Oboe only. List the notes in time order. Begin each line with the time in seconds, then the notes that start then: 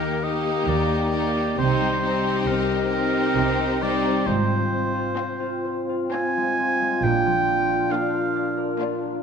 Already playing: A#4
0.23 D#5
0.68 D5
1.58 C5
2.41 C5
2.48 A#4
3.83 D5
4.27 C5
6.12 G#5
7.03 G5
7.92 F5